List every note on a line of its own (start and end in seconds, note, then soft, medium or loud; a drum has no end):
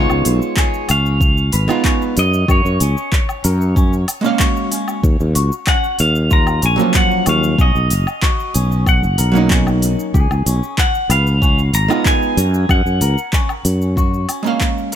0.00 0.87 G#3 medium
0.00 0.88 B3 medium
0.00 0.11 C#4 medium
0.00 0.89 D#4 medium
0.00 0.90 F4 loud
0.00 0.93 C#5 loud
0.10 0.23 C#2 medium
0.10 low woodblock medium
0.10 shaker soft
0.25 0.39 B1 medium
0.25 open hi-hat loud
0.25 shaker medium
0.42 shaker soft
0.57 0.87 G#4 medium
0.57 kick loud
0.57 clap loud
0.57 shaker soft
0.74 shaker soft
0.89 1.49 C#2 medium
0.89 1.18 C#4 medium
0.89 2.13 F5 loud
0.89 open hi-hat medium
0.89 low woodblock medium
0.89 shaker medium
1.06 shaker soft
1.21 kick loud
1.21 shaker soft
1.38 shaker soft
1.52 1.67 G#1 medium
1.52 1.70 B4 medium
1.52 open hi-hat medium
1.52 shaker medium
1.68 2.14 G#3 medium
1.68 2.14 B3 medium
1.68 2.15 D#4 medium
1.68 2.15 F4 loud
1.68 low woodblock medium
1.68 shaker soft
1.84 2.02 C#4 medium
1.84 kick loud
1.84 clap loud
1.84 shaker soft
2.02 shaker soft
2.17 2.44 F#2 medium
2.17 2.47 D#5 medium
2.17 open hi-hat medium
2.17 shaker medium
2.34 shaker soft
2.48 2.62 F#2 loud
2.48 2.79 F#4 medium
2.48 4.69 C#5 medium
2.48 kick loud
2.48 low woodblock medium
2.48 shaker soft
2.65 2.78 F#2 medium
2.65 shaker soft
2.80 2.94 C#2 medium
2.80 3.09 C#4 medium
2.80 open hi-hat medium
2.80 shaker medium
2.97 shaker soft
3.12 kick loud
3.12 clap medium
3.12 shaker soft
3.29 low woodblock medium
3.29 shaker soft
3.44 4.04 F#2 loud
3.44 3.62 A#4 medium
3.44 open hi-hat medium
3.44 shaker medium
3.61 shaker soft
3.76 3.93 C#4 medium
3.76 kick loud
3.76 shaker soft
3.93 shaker soft
4.08 open hi-hat medium
4.08 low woodblock medium
4.08 shaker medium
4.21 5.00 G#3 medium
4.21 5.01 A#3 medium
4.21 5.02 C#4 medium
4.21 shaker soft
4.26 5.03 F5 loud
4.39 4.70 F#4 medium
4.39 kick loud
4.39 clap loud
4.39 shaker soft
4.57 shaker soft
4.71 5.00 C#4 medium
4.71 open hi-hat medium
4.71 shaker medium
4.88 low woodblock medium
4.88 shaker soft
5.03 5.17 D#2 loud
5.03 kick loud
5.03 shaker soft
5.20 5.33 D#2 medium
5.20 shaker soft
5.35 5.49 C#2 medium
5.35 5.53 F#4 medium
5.35 open hi-hat medium
5.35 shaker medium
5.52 shaker soft
5.67 5.85 C#4 medium
5.67 6.00 F#5 loud
5.67 kick loud
5.67 clap medium
5.67 low woodblock medium
5.67 shaker soft
5.84 shaker soft
5.99 6.60 D#2 medium
5.99 6.33 F5 medium
5.99 open hi-hat medium
5.99 shaker medium
6.15 shaker soft
6.31 6.61 F4 medium
6.31 6.65 A#5 loud
6.31 kick loud
6.31 shaker soft
6.47 low woodblock medium
6.47 shaker soft
6.62 6.77 A#1 medium
6.62 6.92 C#4 medium
6.62 6.94 G#5 loud
6.62 open hi-hat medium
6.62 shaker medium
6.76 7.55 F#3 medium
6.76 7.56 A#3 medium
6.76 7.57 C#4 medium
6.76 shaker soft
6.81 7.58 F3 loud
6.94 7.29 F#5 medium
6.94 kick loud
6.94 clap loud
6.94 shaker soft
7.11 shaker soft
7.26 7.54 D#2 medium
7.26 7.44 F#4 medium
7.26 7.61 F5 medium
7.26 open hi-hat medium
7.26 low woodblock medium
7.26 shaker medium
7.43 shaker soft
7.58 7.72 B1 loud
7.58 7.76 C#4 medium
7.58 8.91 D#5 loud
7.58 kick loud
7.58 shaker soft
7.75 7.88 B1 medium
7.75 shaker soft
7.90 8.05 F#1 medium
7.90 open hi-hat medium
7.90 shaker medium
8.07 low woodblock medium
8.07 shaker soft
8.22 8.53 F#4 medium
8.22 kick loud
8.22 clap medium
8.22 shaker soft
8.40 shaker soft
8.54 9.02 B1 loud
8.54 8.83 C#4 medium
8.54 open hi-hat medium
8.54 shaker medium
8.72 shaker soft
8.86 9.47 F#5 medium
8.86 kick loud
8.86 low woodblock medium
8.86 shaker soft
9.03 9.16 F#1 medium
9.03 shaker soft
9.18 9.95 B1 medium
9.18 9.36 A#4 medium
9.18 open hi-hat medium
9.18 shaker medium
9.32 10.11 F#3 medium
9.32 10.12 A#3 medium
9.32 10.12 C#4 medium
9.32 shaker soft
9.37 10.13 D#4 loud
9.50 9.68 C#4 medium
9.50 kick loud
9.50 clap loud
9.50 shaker soft
9.67 low woodblock medium
9.67 shaker soft
9.82 open hi-hat medium
9.82 shaker medium
9.99 shaker soft
10.14 10.28 C#2 medium
10.14 10.45 G#4 medium
10.14 kick loud
10.14 shaker soft
10.31 10.44 C#2 medium
10.31 low woodblock medium
10.31 shaker soft
10.46 10.60 B1 medium
10.46 10.75 C#4 medium
10.46 open hi-hat medium
10.46 shaker medium
10.63 shaker soft
10.78 11.11 F#5 medium
10.78 kick loud
10.78 clap medium
10.78 shaker soft
10.95 shaker soft
11.09 11.70 C#2 loud
11.09 11.27 B4 medium
11.09 11.70 F5 loud
11.09 open hi-hat medium
11.09 low woodblock medium
11.09 shaker medium
11.27 shaker soft
11.42 11.59 C#4 medium
11.42 kick loud
11.42 shaker soft
11.59 shaker soft
11.73 11.87 G#1 medium
11.73 12.06 A#5 loud
11.73 open hi-hat medium
11.73 shaker medium
11.88 12.35 G#3 medium
11.88 12.35 B3 medium
11.88 12.36 D#4 medium
11.88 12.36 F4 loud
11.88 low woodblock medium
11.88 shaker soft
12.05 12.36 G#4 medium
12.05 12.72 G#5 loud
12.05 kick loud
12.05 clap medium
12.05 shaker soft
12.23 shaker soft
12.37 12.64 F#2 loud
12.37 12.66 C#4 medium
12.37 open hi-hat medium
12.37 shaker medium
12.54 shaker soft
12.69 12.83 F#2 loud
12.69 13.30 F#5 medium
12.69 kick loud
12.69 low woodblock medium
12.69 shaker soft
12.86 12.99 F#2 medium
12.86 shaker soft
13.01 13.15 C#2 medium
13.01 13.19 A#4 medium
13.01 open hi-hat medium
13.01 shaker medium
13.18 shaker soft
13.33 13.51 C#4 medium
13.33 kick loud
13.33 clap medium
13.33 shaker soft
13.49 low woodblock medium
13.49 shaker soft
13.65 14.25 F#2 medium
13.65 open hi-hat medium
13.65 shaker medium
13.82 shaker soft
13.97 14.28 F#4 medium
13.97 kick loud
13.97 shaker soft
14.14 shaker soft
14.29 14.58 C#4 medium
14.29 open hi-hat medium
14.29 low woodblock medium
14.29 shaker medium
14.43 14.95 G#3 medium
14.43 14.95 A#3 medium
14.43 14.95 C#4 medium
14.43 shaker soft
14.47 14.95 F5 loud
14.61 kick loud
14.61 clap medium
14.61 shaker soft
14.78 shaker soft